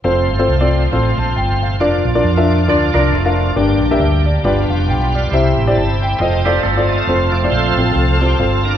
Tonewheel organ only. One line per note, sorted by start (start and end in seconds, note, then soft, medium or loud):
0.04 1.77 A3 medium
0.04 1.77 C4 medium
0.04 1.77 F4 medium
0.04 1.76 C5 medium
1.80 3.52 F3 medium
1.80 3.52 D4 medium
1.80 3.53 F4 medium
1.80 3.53 D5 medium
3.57 3.63 A3 medium
3.57 4.43 D4 medium
3.57 4.43 G4 medium
3.57 4.00 D5 medium
3.63 4.46 A#3 medium
3.99 4.23 G5 medium
4.24 4.43 D5 medium
4.44 5.30 B3 medium
4.44 5.30 F4 medium
4.44 5.29 G4 medium
4.44 4.86 D5 medium
4.87 5.29 D5 medium
5.12 5.55 F5 medium
5.30 6.17 C4 medium
5.30 6.17 E4 medium
5.30 6.17 G4 medium
5.30 5.37 D5 medium
5.35 6.20 E5 medium
5.75 5.99 A5 medium
6.00 6.43 G5 medium
6.19 6.88 C4 medium
6.19 6.88 F4 medium
6.19 7.05 A4 medium
6.19 7.05 D#5 medium
6.89 7.31 A3 medium
6.89 7.32 C4 medium
6.89 7.34 F4 medium
7.32 7.92 F3 soft
7.32 7.92 A3 soft
7.32 7.92 C4 medium
7.32 7.41 D5 medium
7.50 7.94 F4 medium
7.50 7.92 A4 medium
7.50 7.96 C5 medium
7.93 8.18 F3 soft
7.93 8.18 A3 soft
7.93 8.18 C4 medium
7.93 8.64 F4 medium
7.93 8.21 A4 medium
8.19 8.37 G4 medium
8.38 8.65 A4 medium
8.63 8.77 D4 soft
8.63 8.77 F4 medium
8.63 8.77 A#4 medium